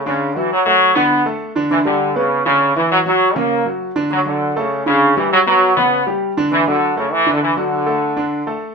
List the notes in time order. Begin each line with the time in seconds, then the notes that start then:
0.06 C#3 D3 D4
0.36 E3 F#3 F#4
0.52 F#3
0.66 F#3 A3 A4
0.96 D3 B3 D4
1.26 A3 A4
1.56 D3 D4
1.71 D3 E3 D4
1.85 D3 G3 G4
2.16 C#3 B3 B4
2.46 C#3 D3 D4
2.76 E3 E4
2.91 F#3
3.06 F#3 F#4
3.36 C#3 A#3 C#4
3.65 F#3 F#4
3.96 D3 D4
4.11 D3 F#3 D4
4.26 D3 F#3 F#4
4.56 C#3 A3 A4
4.86 C#3 D3 D4
5.17 E3 G3 G4
5.32 F#3
5.46 F#3 B3 B4
5.77 C#3 B3 C#4
6.07 G3 G4
6.37 D3 D4
6.52 D3 E3 D4
6.67 D3 F#3 F#4
6.97 C#3 A3 A4
7.12 E3
7.26 D3 D4
7.33 D3
7.42 E3
7.57 D3 F#3 F#4
7.86 A3 A4
8.16 D3 D4
8.47 A3 A4